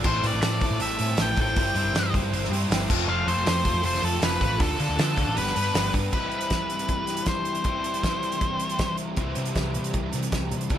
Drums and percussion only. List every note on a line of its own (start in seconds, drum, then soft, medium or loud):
0.04 kick loud
0.04 crash loud
0.23 open hi-hat medium
0.42 snare loud
0.42 open hi-hat medium
0.61 kick medium
0.61 open hi-hat medium
0.80 open hi-hat medium
0.99 open hi-hat medium
1.17 snare loud
1.17 open hi-hat medium
1.37 kick medium
1.37 open hi-hat medium
1.56 kick loud
1.56 open hi-hat medium
1.75 open hi-hat medium
1.95 snare loud
1.95 open hi-hat medium
2.14 kick medium
2.14 open hi-hat medium
2.34 open hi-hat medium
2.44 snare soft
2.53 open hi-hat medium
2.71 snare loud
2.71 open hi-hat medium
2.90 kick loud
2.90 crash loud
3.28 open hi-hat medium
3.46 snare loud
3.46 open hi-hat medium
3.65 kick medium
3.65 open hi-hat medium
3.83 open hi-hat medium
3.94 snare soft
4.03 open hi-hat medium
4.22 snare loud
4.22 open hi-hat medium
4.41 kick medium
4.41 open hi-hat medium
4.60 kick loud
4.60 open hi-hat medium
4.80 open hi-hat medium
4.99 snare loud
4.99 open hi-hat medium
5.17 kick medium
5.17 open hi-hat medium
5.37 open hi-hat medium
5.47 snare soft
5.56 open hi-hat medium
5.75 snare loud
5.75 open hi-hat medium
5.94 kick medium
5.94 open hi-hat medium
6.13 kick loud
6.13 crash medium
6.32 closed hi-hat medium
6.41 closed hi-hat medium
6.50 kick medium
6.50 snare medium
6.50 closed hi-hat medium
6.70 closed hi-hat medium
6.79 closed hi-hat medium
6.89 kick medium
6.89 closed hi-hat soft
7.07 snare soft
7.07 closed hi-hat medium
7.17 closed hi-hat medium
7.26 kick loud
7.26 snare medium
7.26 closed hi-hat medium
7.45 closed hi-hat soft
7.55 closed hi-hat medium
7.64 kick loud
7.64 closed hi-hat soft
7.84 closed hi-hat medium
7.94 closed hi-hat medium
8.03 kick medium
8.03 snare medium
8.03 closed hi-hat soft
8.23 closed hi-hat soft
8.32 closed hi-hat medium
8.41 kick medium
8.41 closed hi-hat soft
8.60 closed hi-hat medium
8.69 closed hi-hat medium
8.79 kick loud
8.79 snare loud
8.79 closed hi-hat medium
8.98 closed hi-hat medium
9.17 kick loud
9.17 closed hi-hat medium
9.35 closed hi-hat medium
9.46 closed hi-hat medium
9.55 kick medium
9.55 snare medium
9.55 closed hi-hat medium
9.74 closed hi-hat medium
9.84 closed hi-hat medium
9.94 kick medium
9.94 closed hi-hat medium
10.13 snare soft
10.13 closed hi-hat medium
10.23 closed hi-hat medium
10.32 kick loud
10.32 snare loud
10.32 closed hi-hat medium
10.51 closed hi-hat medium
10.61 closed hi-hat medium
10.70 kick loud
10.70 closed hi-hat soft